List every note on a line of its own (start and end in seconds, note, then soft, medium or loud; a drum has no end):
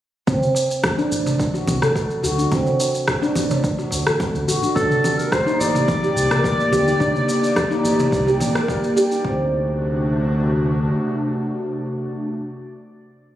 0.27 0.40 D2 loud
0.27 0.41 C4 medium
0.27 kick loud
0.27 darbuka tek medium
0.27 shaker soft
0.42 darbuka dum medium
0.42 shaker soft
0.55 darbuka ka medium
0.55 darbuka tek medium
0.55 shaker medium
0.71 shaker soft
0.84 kick medium
0.84 cross-stick medium
0.84 low conga medium
0.84 shaker soft
0.98 1.53 D4 loud
0.98 darbuka ka medium
0.98 shaker soft
1.11 1.64 A1 loud
1.11 shaker medium
1.26 darbuka tek medium
1.26 darbuka dum medium
1.26 shaker soft
1.40 kick medium
1.40 shaker soft
1.54 1.67 F#4 medium
1.54 darbuka ka soft
1.54 shaker soft
1.68 1.80 C2 medium
1.68 low conga medium
1.68 shaker medium
1.82 2.20 A1 medium
1.82 2.22 A4 medium
1.82 cross-stick medium
1.82 darbuka dum medium
1.82 shaker soft
1.96 kick loud
1.96 shaker soft
2.11 shaker soft
2.23 2.47 D2 medium
2.23 2.38 F#4 medium
2.23 darbuka ka medium
2.23 shaker medium
2.38 2.46 D4 medium
2.38 shaker soft
2.51 2.64 D2 medium
2.51 2.66 C4 medium
2.51 kick loud
2.51 darbuka tek medium
2.51 low conga medium
2.51 shaker soft
2.67 darbuka dum medium
2.67 shaker soft
2.80 darbuka ka soft
2.80 darbuka tek medium
2.80 shaker medium
2.95 shaker soft
3.08 kick medium
3.08 cross-stick medium
3.08 shaker soft
3.22 3.77 D4 loud
3.22 darbuka ka medium
3.22 shaker soft
3.36 3.89 A1 loud
3.36 low conga medium
3.36 shaker medium
3.51 darbuka tek medium
3.51 darbuka dum medium
3.51 shaker soft
3.64 kick loud
3.64 shaker soft
3.78 3.91 F#4 medium
3.78 darbuka tek medium
3.78 shaker soft
3.91 4.04 D2 medium
3.91 darbuka tek medium
3.91 shaker medium
4.06 4.30 A1 medium
4.06 4.47 A4 medium
4.06 cross-stick medium
4.06 shaker soft
4.20 kick loud
4.20 low conga medium
4.20 shaker soft
4.34 4.46 D2 medium
4.34 shaker soft
4.48 4.60 A1 medium
4.48 4.62 F#4 medium
4.48 shaker medium
4.63 4.70 D4 medium
4.63 shaker soft
4.76 4.88 D2 medium
4.76 9.21 D#3 medium
4.76 9.21 A#3 medium
4.76 4.90 D4 medium
4.76 9.21 G4 medium
4.76 5.20 A4 loud
4.76 9.21 D5 medium
4.76 kick loud
4.76 darbuka tek medium
4.76 shaker soft
4.91 darbuka dum loud
4.91 shaker soft
5.04 darbuka ka soft
5.04 darbuka tek medium
5.04 low conga medium
5.04 shaker medium
5.18 5.34 A#4 medium
5.18 shaker soft
5.32 5.62 C5 loud
5.32 kick loud
5.32 cross-stick medium
5.32 shaker soft
5.46 6.01 D#4 loud
5.46 darbuka ka medium
5.46 shaker soft
5.60 6.13 A1 medium
5.60 8.69 D5 loud
5.60 shaker medium
5.74 darbuka tek medium
5.74 darbuka dum medium
5.74 shaker soft
5.88 kick loud
5.88 low conga medium
5.88 shaker soft
6.02 6.16 G4 medium
6.02 darbuka ka soft
6.02 shaker soft
6.16 6.28 C2 medium
6.16 shaker medium
6.31 6.69 A1 medium
6.31 6.71 A#4 medium
6.31 cross-stick medium
6.31 darbuka dum loud
6.31 shaker soft
6.44 kick loud
6.44 shaker soft
6.60 shaker soft
6.72 6.96 D2 medium
6.72 6.86 G4 medium
6.72 darbuka ka soft
6.72 low conga medium
6.72 shaker medium
6.87 6.95 D#4 medium
6.87 shaker soft
7.00 7.13 D2 loud
7.00 7.14 D4 loud
7.00 kick loud
7.00 darbuka tek medium
7.00 shaker soft
7.15 darbuka dum medium
7.15 shaker soft
7.28 darbuka ka soft
7.28 darbuka tek medium
7.28 shaker medium
7.44 shaker soft
7.56 kick loud
7.56 cross-stick medium
7.56 low conga medium
7.56 shaker soft
7.70 8.26 D#4 loud
7.70 darbuka ka medium
7.70 shaker soft
7.84 8.12 A1 loud
7.84 shaker medium
7.99 darbuka tek medium
7.99 darbuka dum medium
7.99 shaker soft
8.12 8.42 C2 loud
8.12 kick loud
8.12 shaker soft
8.27 8.40 G4 medium
8.27 darbuka tek medium
8.27 shaker soft
8.40 8.53 A1 medium
8.40 darbuka tek medium
8.40 low conga medium
8.40 shaker medium
8.55 8.95 A#4 medium
8.55 cross-stick medium
8.55 shaker soft
8.68 kick loud
8.68 shaker soft
8.84 shaker soft
8.97 9.10 G4 medium
8.97 shaker medium
9.11 9.19 D#4 medium
9.11 shaker soft
9.24 10.89 D2 loud
9.24 12.25 C3 medium
9.24 12.25 A3 medium
9.24 9.51 C4 medium
9.24 12.25 D4 medium
9.24 12.25 F#4 medium
9.24 kick loud